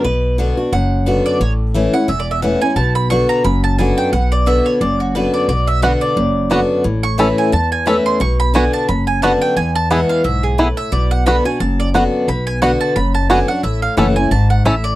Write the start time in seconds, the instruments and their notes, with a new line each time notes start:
0.04 upright bass B1, steel-string acoustic guitar B2, mandolin B4
0.38 steel-string acoustic guitar D3 B3 D4 F#4
0.57 steel-string acoustic guitar D4 F#4
0.72 upright bass F#1, steel-string acoustic guitar F#2, mandolin F#5
1.06 steel-string acoustic guitar D3 B3 D4 F#4
1.26 mandolin D5
1.40 upright bass A1, steel-string acoustic guitar A2, mandolin C#5
1.74 steel-string acoustic guitar E3 A3 C#4 E4
1.93 steel-string acoustic guitar C#4 E4, mandolin F#5
2.08 upright bass E1, steel-string acoustic guitar E2, mandolin E5
2.20 mandolin D5
2.31 mandolin E5
2.42 steel-string acoustic guitar E3 A3 C#4 E4, mandolin F#5
2.61 steel-string acoustic guitar C#4 E4, mandolin G#5
2.76 upright bass B1, steel-string acoustic guitar B2, mandolin A5
2.95 mandolin B5
3.10 steel-string acoustic guitar D3 B3 D4 F#4, mandolin C#6
3.29 mandolin A#5
3.44 upright bass F#1, steel-string acoustic guitar F#2, mandolin B5
3.64 mandolin A5
3.78 steel-string acoustic guitar D3 B3 D4 F#4, mandolin G#5
3.98 mandolin G5
4.13 upright bass B1, steel-string acoustic guitar B2, mandolin F#5
4.32 mandolin D5
4.46 steel-string acoustic guitar D3 B3 D4 F#4, mandolin E5
4.66 mandolin C#5
4.81 upright bass F#1, steel-string acoustic guitar F#2, mandolin D5
5.00 mandolin F#4
5.15 steel-string acoustic guitar D3 B3 D4 F#4, mandolin B4
5.34 mandolin D5
5.48 upright bass B1, steel-string acoustic guitar B2, mandolin D5
5.67 mandolin E5
5.82 steel-string acoustic guitar D3 B3 D4 F#4, five-string banjo B3 F#4, mandolin F#5
6.01 mandolin D5
6.16 upright bass F#1, steel-string acoustic guitar F#2
6.50 steel-string acoustic guitar D3 B3 D4 F#4, five-string banjo B3 F#4
6.84 upright bass A1, steel-string acoustic guitar A2
7.03 mandolin C#6
7.18 steel-string acoustic guitar E3 A3 C#4 E4, five-string banjo C#4 E4 A4, mandolin B5
7.38 mandolin G#5
7.52 steel-string acoustic guitar E2, upright bass E2, mandolin A5
7.72 mandolin G#5
7.86 steel-string acoustic guitar E3 A3 C#4 E4, five-string banjo C#4 E4 A4, mandolin B5
8.06 mandolin C6
8.20 upright bass B1, steel-string acoustic guitar B2, mandolin C#6
8.40 mandolin B5
8.54 steel-string acoustic guitar D3 B3 D4 F#4, five-string banjo B3 F#4, mandolin G#5
8.73 mandolin A5
8.88 upright bass F#1, steel-string acoustic guitar F#2, mandolin B5
9.07 mandolin G#5
9.22 steel-string acoustic guitar D3 B3 D4 F#4, five-string banjo B3 F#4, mandolin A5
9.42 mandolin G5
9.57 upright bass E2, steel-string acoustic guitar E2, mandolin G#5
9.75 mandolin A5
9.90 steel-string acoustic guitar E3 G#3 B3 E4, five-string banjo B3 E4 G#4, mandolin F#5
10.09 mandolin F5
10.24 upright bass B1, steel-string acoustic guitar G#2, mandolin E5
10.43 mandolin G#4
10.58 steel-string acoustic guitar A2, five-string banjo B3 E4 G#4, mandolin B4
10.77 mandolin E5
10.92 upright bass B1, steel-string acoustic guitar B2, mandolin D5
11.11 mandolin F#5
11.26 steel-string acoustic guitar D3 B3 D4 F#4, five-string banjo B3 F#4, mandolin B5
11.45 steel-string acoustic guitar D4 F#4, mandolin G#5
11.60 upright bass F#1, steel-string acoustic guitar F#2, mandolin A5
11.80 mandolin D5
11.94 steel-string acoustic guitar D3 B3 D4 F#4, five-string banjo B3 F#4
12.28 upright bass B1, steel-string acoustic guitar B2, mandolin B5
12.47 mandolin G#5
12.62 steel-string acoustic guitar D3 B3 D4 F#4, five-string banjo B3 F#4, mandolin F#5
12.81 mandolin A5
12.96 upright bass F#1, steel-string acoustic guitar F#2, mandolin B5
13.14 mandolin A5
13.29 steel-string acoustic guitar D3 B3 D4 F#4, five-string banjo B3 F#4, mandolin G#5
13.48 steel-string acoustic guitar D4 F#4, mandolin F#5
13.63 upright bass A1, steel-string acoustic guitar A2, mandolin E5
13.82 mandolin F5
13.97 upright bass F#1, steel-string acoustic guitar E3 A3 C#4 E4, five-string banjo C#4 E4 A4, mandolin F#5
14.16 steel-string acoustic guitar C#4 E4, mandolin G#5
14.31 upright bass G#1, steel-string acoustic guitar G#2, mandolin A5
14.50 mandolin F#5
14.65 upright bass A1, steel-string acoustic guitar A2, five-string banjo C#4 E4 A4, mandolin E5
14.84 mandolin D5